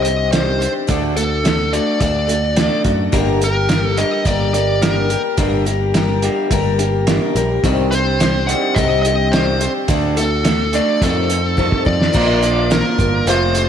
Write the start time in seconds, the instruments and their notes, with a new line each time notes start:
Already playing: picked electric bass C2
0.03 clean electric guitar C3 D#3, twelve-string acoustic guitar G3 C4 D4 G4, lead electric guitar D#5, closed hi-hat
0.32 clean electric guitar C3 D#3 G3, twelve-string acoustic guitar G3 C4 D4 G4, lead electric guitar C5, snare, closed hi-hat
0.60 clean electric guitar C3 D#3, twelve-string acoustic guitar G3 C4 D4 G4, closed hi-hat
0.87 picked electric bass D2, twelve-string acoustic guitar D3 A3 D4 F#4 A4, clean electric guitar D3 A3 D4, kick, closed hi-hat
1.16 clean electric guitar D3 A3, twelve-string acoustic guitar D4 F#4 A4, lead electric guitar A4, closed hi-hat
1.44 clean electric guitar D3 A3, twelve-string acoustic guitar A3 D4 F#4 A4, snare, closed hi-hat
1.73 clean electric guitar D3 A3 D4, twelve-string acoustic guitar D4 F#4 A4, lead electric guitar D5, closed hi-hat
2.00 picked electric bass D2, twelve-string acoustic guitar D3 A3 D4 F#4 A4, lead electric guitar D5, kick, closed hi-hat
2.28 clean electric guitar D3 A3, twelve-string acoustic guitar D4 F#4 A4, closed hi-hat
2.56 clean electric guitar D3 A3 D4, twelve-string acoustic guitar A3 D4 F#4 A4, snare, closed hi-hat
2.84 picked electric bass F#2, clean electric guitar D3 A3, twelve-string acoustic guitar D4 F#4 A4, kick, closed hi-hat
3.12 picked electric bass G1, clean electric guitar G2 D3 G3, twelve-string acoustic guitar G2 D3 G3 A#3 G4 A#4, kick, closed hi-hat
3.41 clean electric guitar G2, twelve-string acoustic guitar G3 A#3 G4 A#4, lead electric guitar A#4, closed hi-hat
3.69 clean electric guitar G2 D3, twelve-string acoustic guitar G3 A#3 G4 A#4, snare, closed hi-hat
3.85 lead electric guitar A4
3.97 clean electric guitar G2 D3 G3, twelve-string acoustic guitar G3 A#3 G4 A#4, lead electric guitar D#5, closed hi-hat
4.25 picked electric bass G1, twelve-string acoustic guitar G2 D3 G3 A#3 G4 A#4, lead electric guitar D5, kick, closed hi-hat
4.53 clean electric guitar G2 D3, twelve-string acoustic guitar G3 A#3 G4 A#4, lead electric guitar D5, closed hi-hat
4.81 clean electric guitar G2 D3 G3, twelve-string acoustic guitar G3 A#3 G4 A#4, lead electric guitar A#4, snare, closed hi-hat
5.10 clean electric guitar G2 D3, twelve-string acoustic guitar G3 A#3 G4 A#4, closed hi-hat
5.37 picked electric bass G1, twelve-string acoustic guitar G2 D3 G3 A#3 G4 A#4, clean electric guitar G2 D3 G3, kick, closed hi-hat
5.65 clean electric guitar G2 D3, twelve-string acoustic guitar G3 A#3 G4 A#4, closed hi-hat
5.94 clean electric guitar G2 D3, twelve-string acoustic guitar G3 A#3 G4 A#4, snare, closed hi-hat
6.22 clean electric guitar G2 D3 G3, twelve-string acoustic guitar G3 A#3 G4 A#4, closed hi-hat
6.50 picked electric bass G1, clean electric guitar G2, twelve-string acoustic guitar G2 D3 G3 A#3 G4 A#4, kick, closed hi-hat
6.79 clean electric guitar G2 D3, twelve-string acoustic guitar G3 A#3 G4 A#4, closed hi-hat
7.07 clean electric guitar G2 D3 G3, twelve-string acoustic guitar G3 A#3 G4 A#4, snare, closed hi-hat
7.35 picked electric bass A#1, clean electric guitar G2 D3, twelve-string acoustic guitar G3 A#3 G4 A#4, closed hi-hat
7.63 picked electric bass C2, clean electric guitar C3 D#3 G3, twelve-string acoustic guitar C3 D#3 G3 C4 D4 G4, kick, closed hi-hat
7.91 clean electric guitar C3 D#3, twelve-string acoustic guitar G3 C4 D4 G4, lead electric guitar C5, closed hi-hat
8.20 clean electric guitar C3 D#3, twelve-string acoustic guitar G3 C4 D4 G4, snare, closed hi-hat
8.47 clean electric guitar C3 D#3 G3, twelve-string acoustic guitar G3 C4 D4 G4, lead electric guitar F#5, closed hi-hat
8.75 picked electric bass C2, clean electric guitar C3 D#3, twelve-string acoustic guitar C3 D#3 G3 C4 G4, lead electric guitar D#5, kick, closed hi-hat
8.79 twelve-string acoustic guitar D4
9.02 clean electric guitar C3 D#3, twelve-string acoustic guitar D4 G4, lead electric guitar D#5, closed hi-hat
9.07 twelve-string acoustic guitar G3 C4
9.32 clean electric guitar C3 D#3 G3, twelve-string acoustic guitar G3 C4 D4, lead electric guitar C5, snare, closed hi-hat
9.36 twelve-string acoustic guitar G4
9.61 clean electric guitar C3 D#3, twelve-string acoustic guitar G3 C4 D4 G4, closed hi-hat
9.88 picked electric bass D2, clean electric guitar D3 A3 D4, twelve-string acoustic guitar D3 A3 D4 F#4 A4, kick, closed hi-hat
10.16 clean electric guitar D3 A3, twelve-string acoustic guitar D4 F#4 A4, lead electric guitar A4, closed hi-hat
10.45 clean electric guitar D3 A3, twelve-string acoustic guitar A3 D4 F#4 A4, snare, closed hi-hat
10.73 clean electric guitar D3 A3 D4, twelve-string acoustic guitar D4 F#4 A4, lead electric guitar D5, closed hi-hat
11.02 picked electric bass F2, clean electric guitar F2 C3 D#3, twelve-string acoustic guitar F3 C4 D#4 A4, lead electric guitar A4, kick, closed hi-hat
11.29 clean electric guitar F2 C3, twelve-string acoustic guitar C4 D#4 A4, closed hi-hat
11.57 clean electric guitar F2 C3 D#3, twelve-string acoustic guitar F3 C4 D#4 A4, kick
11.72 kick
11.85 picked electric bass F2, clean electric guitar F2, twelve-string acoustic guitar C4 D#4 A4, lead electric guitar D5, kick
12.02 snare
12.13 picked electric bass A#1, twelve-string acoustic guitar A#2 D3 F3 A#3 D4 A#4, clean electric guitar A#2 D3 A#3, kick, crash
12.17 clean electric guitar D4 F4
12.41 twelve-string acoustic guitar F3 A#3 D4 A#4, closed hi-hat
12.70 twelve-string acoustic guitar F3 A#3 D4 A#4, lead electric guitar A#4, snare, closed hi-hat
12.98 picked electric bass G1, twelve-string acoustic guitar F3 A#3 D4 A#4, kick, closed hi-hat
13.26 picked electric bass F1, clean electric guitar F2 C3 F3 A3 C4 F4, twelve-string acoustic guitar F3 C4 F4 A4, lead electric guitar C5, closed hi-hat
13.54 twelve-string acoustic guitar C4 F4 A4, closed hi-hat